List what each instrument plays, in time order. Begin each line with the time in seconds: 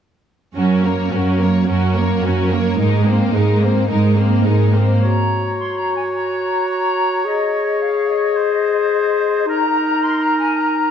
0.56 cello section F#2, viola section C#4, violin section F#4 A#4
0.84 viola section A#3, violin section A#4 C#5
1.11 cello section F#2, viola section C#4, violin section F#4 A#4
1.39 viola section A#3, violin section A#4 C#5
1.67 cello section F#2, viola section C#4, violin section F#4 A#4
1.96 viola section A#3, violin section A#4 C#5
2.23 cello section F#2, viola section C#4, violin section F#4 A#4
2.51 viola section A#3, violin section A#4 C#5
2.78 cello section G#2, viola section G#3, violin section D#4 A#4
3.06 viola section A#3, violin section C4 C5
3.33 cello section G#2, viola section G#3, violin section D#4 A#4
3.60 viola section A#3, violin section C4 C5
3.89 cello section G#2, viola section G#3, violin section D#4 A#4
4.17 viola section A#3, violin section C4 C5
4.43 cello section G#2, viola section G#3, violin section D#4 A#4
4.73 viola section A#3, violin section C4 C5
5.02 clarinet F#4, oboe C#5, flute section A#5
5.58 flute section C6
5.78 flute section A#5
5.96 flute section G#5
6.15 flute section A#5
6.70 flute section A#5
7.25 clarinet G#4, flute section D#5
7.81 flute section F5
8.09 flute section D#5
8.37 oboe C5
9.46 clarinet D#4, oboe A#4, flute section A#5
10.02 flute section C6
10.22 flute section A#5
10.40 flute section G#5
10.56 flute section A#5